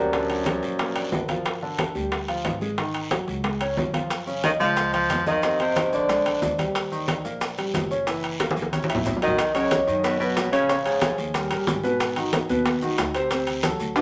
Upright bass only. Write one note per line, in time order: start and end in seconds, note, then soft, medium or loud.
0.00 0.57 D2 medium
0.62 1.09 A#1 medium
1.12 1.89 G1 medium
1.95 2.42 D2 medium
2.45 3.22 G#1 medium
3.28 3.74 C#2 medium
3.77 4.54 F#2 medium
4.60 5.06 C#2 medium
5.10 5.87 F2 medium
5.93 6.39 A#1 loud
6.42 7.19 D#2 medium
7.25 7.71 A#1 medium
7.74 8.51 F#1 medium
8.57 9.02 A#1 loud
9.06 9.82 B1 medium
9.87 10.33 F#2 loud
10.36 11.13 A#1 medium
11.18 11.49 D#2 medium
11.51 11.66 A#1 medium
11.67 12.44 G#1 medium
12.49 12.95 D#2 loud
12.98 13.74 D2 medium
13.80 14.02 D2 medium